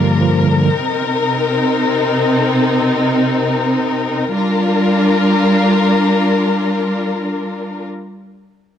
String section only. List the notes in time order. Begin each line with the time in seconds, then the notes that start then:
Already playing: G3 D4 F4 A#4
0.67 C3 C4 D#4
4.33 G3 D4 F4 A#4